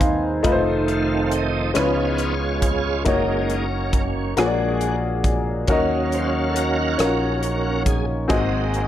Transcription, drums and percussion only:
0.01 kick, closed hi-hat
0.44 kick, closed hi-hat
0.88 closed hi-hat
1.32 closed hi-hat
1.75 cross-stick, closed hi-hat
2.18 closed hi-hat
2.62 kick, closed hi-hat
3.06 kick, closed hi-hat
3.50 closed hi-hat
3.93 kick, closed hi-hat
4.37 cross-stick, closed hi-hat
4.81 closed hi-hat
5.24 kick, closed hi-hat
5.68 kick, closed hi-hat
6.12 closed hi-hat
6.56 closed hi-hat
6.99 cross-stick, closed hi-hat
7.43 closed hi-hat
7.86 kick, closed hi-hat
8.30 kick, closed hi-hat
8.74 closed hi-hat

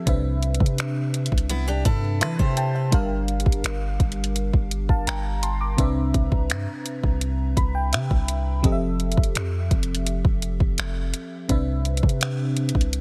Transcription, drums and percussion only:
0.07 kick, closed hi-hat
0.43 closed hi-hat
0.55 closed hi-hat
0.60 kick
0.66 closed hi-hat
0.78 finger snap, closed hi-hat
1.14 closed hi-hat
1.26 closed hi-hat
1.32 kick
1.38 closed hi-hat
1.50 closed hi-hat
1.85 kick, closed hi-hat
2.21 finger snap, closed hi-hat
2.39 kick
2.57 closed hi-hat
2.92 kick, closed hi-hat
3.28 closed hi-hat
3.40 closed hi-hat
3.46 kick
3.52 closed hi-hat
3.64 finger snap, closed hi-hat
4.00 kick, closed hi-hat
4.12 closed hi-hat
4.24 closed hi-hat
4.36 closed hi-hat
4.54 kick
4.71 closed hi-hat
4.89 kick
5.07 finger snap, closed hi-hat
5.43 closed hi-hat
5.78 kick, closed hi-hat
6.14 kick, closed hi-hat
6.32 kick
6.50 finger snap, closed hi-hat
6.86 closed hi-hat
7.04 kick
7.21 closed hi-hat
7.57 kick, closed hi-hat
7.93 finger snap, closed hi-hat
8.11 kick
8.28 closed hi-hat
8.64 kick, closed hi-hat
9.00 closed hi-hat
9.12 closed hi-hat
9.17 kick
9.24 closed hi-hat
9.35 finger snap, closed hi-hat
9.71 kick, closed hi-hat
9.83 closed hi-hat
9.95 closed hi-hat
10.07 closed hi-hat
10.25 kick
10.42 closed hi-hat
10.60 kick
10.78 finger snap, closed hi-hat
11.14 closed hi-hat
11.49 kick, closed hi-hat
11.85 closed hi-hat
11.97 closed hi-hat
12.03 kick
12.09 closed hi-hat
12.21 finger snap, closed hi-hat
12.57 closed hi-hat
12.69 closed hi-hat
12.75 kick
12.81 closed hi-hat
12.93 closed hi-hat

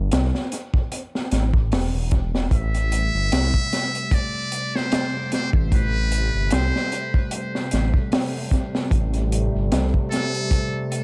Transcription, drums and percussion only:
0.12 snare, closed hi-hat
0.35 snare
0.52 closed hi-hat
0.74 kick
0.92 closed hi-hat
1.15 snare
1.31 snare, closed hi-hat
1.54 kick
1.72 snare, open hi-hat
2.11 kick, closed hi-hat
2.35 snare
2.51 kick, closed hi-hat
2.74 closed hi-hat
2.92 closed hi-hat
3.32 snare, closed hi-hat
3.54 kick
3.73 snare, closed hi-hat
3.95 closed hi-hat
4.11 kick, closed hi-hat
4.52 closed hi-hat
4.75 snare
4.92 snare, closed hi-hat
5.32 snare, closed hi-hat
5.53 kick
5.72 kick, closed hi-hat
6.12 closed hi-hat
6.51 snare, closed hi-hat
6.76 snare
6.92 closed hi-hat
7.14 kick
7.31 closed hi-hat
7.55 snare
7.71 snare, closed hi-hat
7.94 kick
8.12 snare, open hi-hat
8.51 kick, closed hi-hat
8.75 snare
8.91 kick, closed hi-hat
9.14 closed hi-hat
9.32 closed hi-hat
9.72 snare, closed hi-hat
9.94 kick
10.12 snare, closed hi-hat
10.35 closed hi-hat
10.51 kick, closed hi-hat
10.92 closed hi-hat

